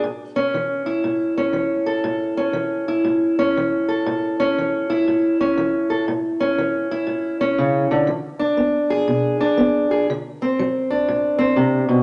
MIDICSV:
0, 0, Header, 1, 2, 480
1, 0, Start_track
1, 0, Key_signature, 3, "major"
1, 0, Tempo, 501672
1, 42, Time_signature, 4, 2, 24, 8
1, 11509, End_track
2, 0, Start_track
2, 0, Title_t, "Steel-string acoustic guitar"
2, 0, Program_c, 0, 25
2, 35, Note_on_c, 0, 45, 66
2, 345, Note_on_c, 0, 61, 57
2, 483, Note_off_c, 0, 45, 0
2, 519, Note_on_c, 0, 52, 60
2, 824, Note_on_c, 0, 64, 55
2, 965, Note_off_c, 0, 52, 0
2, 994, Note_on_c, 0, 45, 57
2, 1312, Note_off_c, 0, 61, 0
2, 1316, Note_on_c, 0, 61, 56
2, 1443, Note_off_c, 0, 45, 0
2, 1465, Note_on_c, 0, 52, 63
2, 1783, Note_on_c, 0, 69, 60
2, 1918, Note_off_c, 0, 52, 0
2, 1950, Note_on_c, 0, 45, 74
2, 2268, Note_off_c, 0, 61, 0
2, 2271, Note_on_c, 0, 61, 58
2, 2400, Note_off_c, 0, 45, 0
2, 2423, Note_on_c, 0, 52, 65
2, 2752, Note_off_c, 0, 64, 0
2, 2756, Note_on_c, 0, 64, 59
2, 2877, Note_off_c, 0, 52, 0
2, 2913, Note_on_c, 0, 45, 61
2, 3238, Note_off_c, 0, 61, 0
2, 3242, Note_on_c, 0, 61, 57
2, 3362, Note_off_c, 0, 45, 0
2, 3419, Note_on_c, 0, 52, 61
2, 3713, Note_off_c, 0, 69, 0
2, 3717, Note_on_c, 0, 69, 60
2, 3855, Note_off_c, 0, 52, 0
2, 3888, Note_on_c, 0, 45, 71
2, 4203, Note_off_c, 0, 61, 0
2, 4207, Note_on_c, 0, 61, 61
2, 4329, Note_off_c, 0, 45, 0
2, 4386, Note_on_c, 0, 52, 62
2, 4682, Note_off_c, 0, 64, 0
2, 4686, Note_on_c, 0, 64, 55
2, 4818, Note_off_c, 0, 52, 0
2, 4856, Note_on_c, 0, 45, 66
2, 5157, Note_off_c, 0, 61, 0
2, 5172, Note_on_c, 0, 61, 59
2, 5293, Note_off_c, 0, 45, 0
2, 5335, Note_on_c, 0, 52, 65
2, 5641, Note_off_c, 0, 69, 0
2, 5645, Note_on_c, 0, 69, 56
2, 5773, Note_off_c, 0, 52, 0
2, 5788, Note_off_c, 0, 69, 0
2, 5791, Note_off_c, 0, 61, 0
2, 5817, Note_on_c, 0, 45, 65
2, 6128, Note_on_c, 0, 61, 57
2, 6254, Note_off_c, 0, 45, 0
2, 6300, Note_on_c, 0, 52, 57
2, 6611, Note_off_c, 0, 64, 0
2, 6615, Note_on_c, 0, 64, 61
2, 6735, Note_off_c, 0, 52, 0
2, 6761, Note_on_c, 0, 45, 62
2, 7076, Note_off_c, 0, 61, 0
2, 7087, Note_on_c, 0, 61, 62
2, 7206, Note_off_c, 0, 45, 0
2, 7256, Note_on_c, 0, 49, 60
2, 7556, Note_off_c, 0, 49, 0
2, 7568, Note_on_c, 0, 50, 65
2, 7710, Note_off_c, 0, 61, 0
2, 7713, Note_off_c, 0, 64, 0
2, 7722, Note_on_c, 0, 52, 70
2, 7730, Note_off_c, 0, 50, 0
2, 8031, Note_on_c, 0, 62, 55
2, 8167, Note_off_c, 0, 52, 0
2, 8202, Note_on_c, 0, 59, 56
2, 8518, Note_on_c, 0, 68, 65
2, 8647, Note_off_c, 0, 59, 0
2, 8685, Note_on_c, 0, 47, 61
2, 8987, Note_off_c, 0, 62, 0
2, 8999, Note_on_c, 0, 62, 64
2, 9129, Note_off_c, 0, 47, 0
2, 9161, Note_on_c, 0, 59, 63
2, 9470, Note_off_c, 0, 68, 0
2, 9482, Note_on_c, 0, 68, 60
2, 9607, Note_off_c, 0, 59, 0
2, 9626, Note_off_c, 0, 62, 0
2, 9627, Note_off_c, 0, 68, 0
2, 9662, Note_on_c, 0, 50, 73
2, 9969, Note_on_c, 0, 60, 56
2, 10097, Note_off_c, 0, 50, 0
2, 10136, Note_on_c, 0, 54, 64
2, 10434, Note_on_c, 0, 62, 58
2, 10574, Note_off_c, 0, 54, 0
2, 10605, Note_on_c, 0, 45, 68
2, 10881, Note_off_c, 0, 60, 0
2, 10893, Note_on_c, 0, 60, 60
2, 11049, Note_off_c, 0, 45, 0
2, 11065, Note_on_c, 0, 48, 64
2, 11369, Note_off_c, 0, 48, 0
2, 11372, Note_on_c, 0, 47, 61
2, 11509, Note_off_c, 0, 47, 0
2, 11509, Note_off_c, 0, 60, 0
2, 11509, Note_off_c, 0, 62, 0
2, 11509, End_track
0, 0, End_of_file